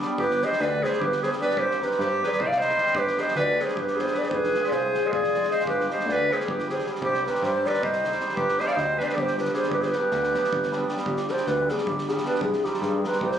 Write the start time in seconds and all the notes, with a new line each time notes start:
0.01 G3 B3 D4 G4, snare
0.18 G1 G4 B4, kick
0.31 snare
0.41 G3 B3 D4 G4 C5 D#5, snare
0.53 snare
0.60 D2 B4 D5, snare
0.83 G3 B3 D4 G4 G#4 C5, snare
0.93 snare
1.01 G1 G4 B4, kick
1.12 snare
1.22 G3 B3 D4 G4 G#4 C5, snare
1.32 snare
1.40 G3 B3 D4 G4 B4 D5, snare
1.50 snare
1.56 C2 G4 C5, kick
1.71 snare
1.80 G3 C4 D#4 G4 B4, snare
1.92 snare
1.99 G2 G4 C5, snare
2.21 G3 C4 D#4 G4 B4, snare
2.26 G#4 D5
2.30 B4, snare
2.34 D5
2.40 C2 C5 D#5, kick
2.47 D5 F5
2.52 snare
2.58 G3 C4 D#4 G4 C5 D#5, snare
2.69 snare
2.76 G3 C4 D#4 G4, snare
2.87 snare
2.94 G1 G4, kick
2.98 B4
3.08 snare
3.17 G3 B3 D4 G4 C5 D#5, snare
3.28 snare
3.35 D2 B4 D5, snare
3.57 G3 B3 D4 G4 G#4, snare
3.63 C5
3.68 snare
3.76 G1 G4, kick
3.81 B4
3.88 snare
3.95 G3 B3 D4 G4 G#4, snare
4.00 C5
4.07 snare
4.14 G3 B3 D4 G4 B4, snare
4.18 D5
4.23 G#4, snare
4.27 F1 G#4 C5, kick
4.35 B4
4.44 snare
4.53 G#3 C4 F4 G#4, snare
4.64 B4 D5, snare
4.70 C2 G#4 C5, snare
4.95 G#3 C4 F4 G#4, snare
5.06 C5 D#5
5.12 F1 G#4 D5, kick
5.24 snare
5.33 G#3 C4 F4 G#4, snare
5.43 snare
5.50 G#3 C4 F4 G#4 C5 D#5, snare
5.60 snare
5.64 G1 G4 B4, kick
5.80 snare
5.88 G3 B3 D4 G4 D#5, snare
5.93 C5
6.00 snare
6.06 D2 D5, snare
6.12 B4
6.29 G3 B3 D4 G4 C5, snare
6.33 G#4
6.41 snare
6.48 G1 G4 B4, kick
6.59 snare
6.67 G3 B3 D4 G4 G#4 C5, snare
6.79 snare
6.86 G3 B3 D4 G4, snare
6.95 snare
7.01 C2 G4 C5, kick
7.14 snare
7.25 G3 C4 D#4 G4 B4, snare
7.35 snare
7.42 G2 G4 C5, snare
7.65 G3 C4 D#4 G4 B4 D5, snare
7.74 snare
7.82 C2 C5 D#5, kick
7.93 snare
8.04 G3 C4 D#4 G4, snare
8.12 snare
8.20 G3 C4 D#4 G4, snare
8.29 snare
8.35 G1 G4 B4, kick
8.49 snare
8.59 G3 B3 D4 G4 C5 D#5, snare
8.68 D5 F5, snare
8.73 D2 C5 D#5
8.78 snare
8.98 G3 B3 D4 G4 B4 D5, snare
9.03 C5 D#5
9.08 B4 D5, snare
9.16 G1 G4 C5, kick
9.28 snare
9.37 G3 B3 D4 G4 B4, snare
9.45 snare
9.54 G3 B3 D4 G4 G#4 C5, snare
9.63 snare
9.70 G1 G4 B4, kick
9.81 G#4 C5, snare
9.89 G4 B4, snare
9.94 G3 B3 D4 G4
10.11 D2, snare
10.23 snare
10.33 G3 B3 D4 G4, snare
10.44 snare
10.52 G1, kick
10.63 snare
10.72 G3 B3 D4 G4, snare
10.88 G3 B3 D4 G4, snare
10.97 snare
11.06 G1 G4, kick
11.17 snare
11.28 G3 B3 D4 G4 C5, snare
11.37 snare
11.47 D2 B4, snare
11.69 G3 B3 D4 G4 G#4, snare
11.78 snare
11.87 G1 G4, kick
11.98 snare
12.08 G3 B3 D4 G4 G#4, snare
12.18 snare
12.23 G3 B3 D4 G4 B4, snare
12.35 snare
12.41 C2 G#4, kick
12.53 snare
12.64 G3 C4 D#4 G4, snare
12.74 snare
12.81 G2 G#4, snare
13.04 G3 C4 D#4 G4 B4, snare
13.13 snare
13.21 C2 C5, kick
13.32 snare